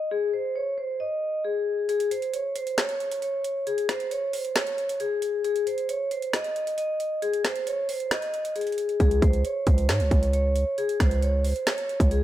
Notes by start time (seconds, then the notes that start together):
0.11 G#4
0.33 C5
0.56 C#5
0.78 C5
1.00 D#5
1.45 G#4
1.89 G#4, closed hi-hat
2.00 closed hi-hat
2.11 C5, closed hi-hat
2.22 closed hi-hat
2.33 C#5, closed hi-hat
2.56 C5, closed hi-hat
2.67 closed hi-hat
2.78 C#5, finger snap, snare, closed hi-hat
2.89 closed hi-hat
3.00 closed hi-hat
3.12 closed hi-hat
3.22 C#5, closed hi-hat
3.44 closed hi-hat
3.67 G#4, closed hi-hat
3.78 closed hi-hat
3.89 C5, finger snap, snare, closed hi-hat
4.00 closed hi-hat
4.11 C#5, closed hi-hat
4.33 C5, open hi-hat
4.45 closed hi-hat
4.56 C#5, finger snap, snare, closed hi-hat
4.67 closed hi-hat
4.78 closed hi-hat
4.89 closed hi-hat
5.00 G#4, closed hi-hat
5.22 closed hi-hat
5.44 G#4, closed hi-hat
5.56 closed hi-hat
5.67 C5, closed hi-hat
5.78 closed hi-hat
5.89 C#5, closed hi-hat
6.11 C5, closed hi-hat
6.22 closed hi-hat
6.33 D#5, finger snap, snare, closed hi-hat
6.44 closed hi-hat
6.56 closed hi-hat
6.67 closed hi-hat
6.78 D#5, closed hi-hat
7.00 closed hi-hat
7.22 G#4, closed hi-hat
7.33 closed hi-hat
7.45 C5, finger snap, snare, closed hi-hat
7.56 closed hi-hat
7.67 C#5, closed hi-hat
7.89 C5, open hi-hat
8.00 closed hi-hat
8.11 D#5, finger snap, snare, closed hi-hat
8.22 closed hi-hat
8.34 closed hi-hat
8.45 closed hi-hat
8.56 G#4, closed hi-hat
8.61 closed hi-hat
8.67 closed hi-hat
8.72 closed hi-hat
8.78 closed hi-hat
8.89 closed hi-hat
9.00 C#2 G#4, kick, closed hi-hat
9.11 closed hi-hat
9.22 C#2 C5, kick, closed hi-hat
9.33 closed hi-hat
9.45 C#5, closed hi-hat
9.67 C#2 C5, kick, closed hi-hat
9.78 closed hi-hat
9.89 G#2 C#5, finger snap, snare, closed hi-hat
10.00 C#2, closed hi-hat
10.11 C#2, kick, closed hi-hat
10.23 closed hi-hat
10.33 C#5, closed hi-hat
10.56 closed hi-hat
10.78 G#4, closed hi-hat
10.89 closed hi-hat
11.00 C#2 C5, finger snap, kick, snare, closed hi-hat
11.11 closed hi-hat
11.22 C#5, closed hi-hat
11.45 C5, open hi-hat
11.56 closed hi-hat
11.67 C#5, finger snap, snare, closed hi-hat
11.78 closed hi-hat
11.89 closed hi-hat
12.00 C#2, kick, closed hi-hat
12.11 G#4, closed hi-hat